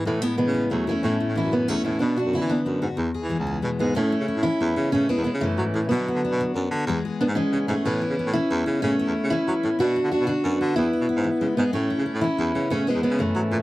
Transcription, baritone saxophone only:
\new Staff \with { instrumentName = "Baritone saxophone" } { \clef bass \time 12/8 \key a \major \tempo 4. = 123 a,8. r8 cis8. e,8 fis,16 r16 a,8 r16 a,8 fis,8. e,16 r16 a,8 | b,8. fis,8 e8. fis,8 gis,16 r16 e,8 r16 e8 cis,8. b,16 r16 gis,8 | a,8. cis16 r16 a,8 r16 e,8 cis8 cis8 r16 e,16 r16 cis8 r16 fis16 r16 a,16 r16 | b,8. d16 r16 b,8 r16 fis,8 d8 e,8 r8. gis,8 r16 cis16 r16 gis,16 r16 |
a,8. cis16 r16 a,8 r16 e,8 cis8 cis8 r16 e,16 r16 cis8 r16 fis16 r16 a,16 r16 | b,8. d16 r16 b,8 r16 fis,8 d8 e,8 r16 b,16 r16 gis,8 r16 cis16 r16 gis,16 r16 | a,8. cis16 r16 a,8 r16 e,8 cis8 cis8 r16 e,16 r16 cis8 r16 fis16 r16 bes,16 r16 | }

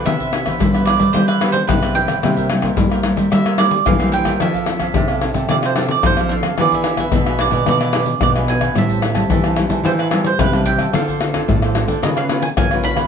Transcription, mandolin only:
\new Staff \with { instrumentName = "Mandolin" } { \time 4/4 \key c \major \tempo 4 = 110 e''4. d''8 c''16 b'8 c''16 b'8 g''8~ | g''4. r8 e''8 d''8 f''8 g''8 | e''2 d''16 c''8 d''16 c''8 f''8 | d''16 e''8 e''8. d''8 d''4 d''8 gis''8 |
e''2 c''16 b'8 c''16 b'8 g''8 | f''2 ees''16 f''8 aes''16 aes''8 b''8 | }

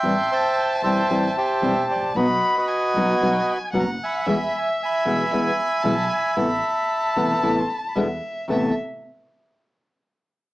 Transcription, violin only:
\new Staff \with { instrumentName = "Violin" } { \time 4/4 \key a \minor \tempo 4 = 114 a''1 | b''4 gis''2 fis''4 | e''2 gis''4 a''8 gis''8 | a''2. e''4 |
e''8 r2. r8 | }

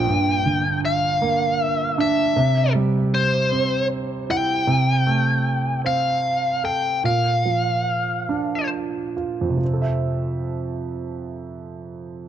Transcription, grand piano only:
\new Staff \with { instrumentName = "Grand piano" } { \time 6/8 \key f \major \tempo 4. = 51 g,8 d4 bes4 d'8 | c8 g4 c'4 e'8 | c8 a4 c'4 a'8 | bes,8 f4 d'4 f'8 |
<f, c f c' a' e''>2. | }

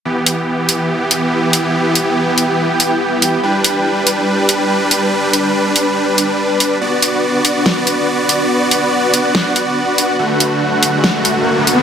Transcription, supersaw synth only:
\new Staff \with { instrumentName = "Supersaw synth" } { \time 4/4 \key e \minor \tempo 4 = 142 <e b g'>1~ | <e b g'>1 | <g d' b'>1~ | <g d' b'>1 |
<b fis' d''>1~ | <b fis' d''>1 | <d a fis'>1 | }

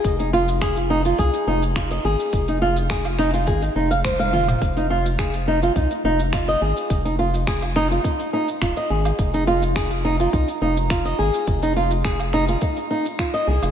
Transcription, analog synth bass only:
\new Staff \with { instrumentName = "Analog synth bass" } { \clef bass \time 4/4 \key f \minor \tempo 4 = 105 f,,2 c,16 r16 f,,4 aes,,16 r16 | f,,2 aes,,16 r16 f,,4. | f,,2 c,16 r16 f,,4 aes,,16 r16 | f,,2 r4 ees,,16 r16 aes,,16 r16 |
f,,2 c,16 r16 f,,4 aes,,16 r16 | f,,2 r4. c,16 f,,16 | }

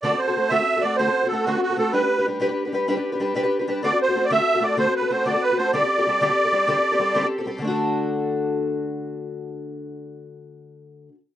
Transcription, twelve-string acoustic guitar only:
\new Staff \with { instrumentName = "Twelve-string acoustic guitar" } { \time 12/8 \key d \mixolydian \tempo 4. = 127 <d a c' fis' a'>16 <c' fis' a'>8 <c' fis' a'>16 <a c' fis' a'>8 <d a c' fis' a'>16 <c' fis' a'>8 <c' fis' a'>16 <a c' fis' a'>8 <d a c' fis' a'>16 <c' fis' a'>8 <c' fis' a'>16 <a c' fis' a'>8 <d a c' fis' a'>16 <c' fis' a'>8 <c' fis' a'>16 <a c' fis' a'>8 | <g d' g' b'>16 <d' g' b'>8 <d' g' b'>16 <g d' g' b'>8 <g d' g' b'>16 <d' g' b'>8 <d' g' b'>16 <g d' g' b'>8 <g d' g' b'>16 <d' g' b'>8 <d' g' b'>16 <g d' g' b'>8 <g d' g' b'>16 <d' g' b'>8 <d' g' b'>16 <g d' g' b'>8 | <d a c' fis' a'>16 <c' fis' a'>8 <c' fis' a'>16 <a c' fis' a'>8 <d a c' fis' a'>16 <c' fis' a'>8 <c' fis' a'>16 <a c' fis' a'>8 <d a c' fis' a'>16 <c' fis' a'>8 <c' fis' a'>16 <a c' fis' a'>8 <d a c' fis' a'>16 <c' fis' a'>8 <c' fis' a'>16 <a c' fis' a'>8 | <d g c' g' a'>16 <c' g' a'>8 <c' g' a'>16 <g c' g' a'>8 <d g c' g' a'>16 <c' g' a'>8 <c' g' a'>16 <g c' g' a'>8 <d g c' g' a'>16 <c' g' a'>8 <c' g' a'>16 <g c' g' a'>8 <d g c' g' a'>16 <c' g' a'>8 <c' g' a'>16 <g c' g' a'>8 |
<d a d' fis' a'>1.~ | <d a d' fis' a'>1. | }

